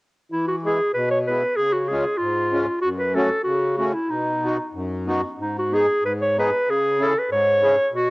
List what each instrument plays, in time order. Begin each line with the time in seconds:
0.32 accordion E3, clarinet E4
0.48 clarinet F#4
0.65 accordion G#3 B3 E4, clarinet G#4
0.94 accordion B2, clarinet B4
1.10 clarinet C#5
1.27 accordion G#3 B3 E4, clarinet B4
1.56 accordion C#3, clarinet G#4
1.73 clarinet F#4
1.88 accordion G#3 C#4, clarinet G#4
1.92 accordion F4
2.17 accordion G#2, clarinet F4
2.52 accordion G#3 C#4 F4
2.81 accordion F#2, clarinet F#4
2.98 clarinet B4
3.15 accordion A3 C#4 F#4, clarinet A4
3.43 accordion C#3, clarinet F#4
3.78 accordion A3 C#4 F#4, clarinet F#4
3.94 clarinet E4
4.10 accordion B2, clarinet D#4
4.43 accordion B3 D#4 F#4
4.74 accordion F#2
5.07 accordion B3 D#4 F#4
5.38 accordion G#2, clarinet D#4
5.58 clarinet F#4
5.71 accordion B3 D#4 G#4, clarinet G#4
6.02 accordion G#2, clarinet B4
6.21 clarinet C#5
6.37 accordion B3 D#4 G#4, clarinet B4
6.68 accordion C#3, clarinet G#4
6.99 accordion C#4 E4 G#4, clarinet A4
7.18 clarinet B4
7.31 accordion G#2, clarinet C#5
7.62 accordion C#4 E4 G#4
7.92 accordion B2, clarinet F#4